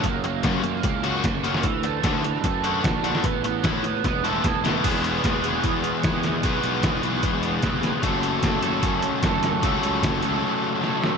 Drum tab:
CC |----------------|----------------|----------------|x---------------|
HH |x-x-x-x-x-x-x-x-|x-x-x-x-x-x-x-x-|x-x-x-x-x-x-x-x-|x-x-x-x-x-x-x-x-|
SD |----o--o----o--o|----o--o----o--o|----o--oo---o-o-|----o-------o-o-|
BD |o---o---o---o---|o---o---o---o---|o---o---o---o---|o---o---o---o---|

CC |----------------|----------------|----------------|
HH |x-x-x-x-x-x-x-x-|x-x-x-x-x-x-x-x-|x-x-x-x---------|
SD |----o-------o-o-|----o-------o-o-|----o-------o-o-|
BD |o---o---o---o---|o---o---o---o---|o---o-----------|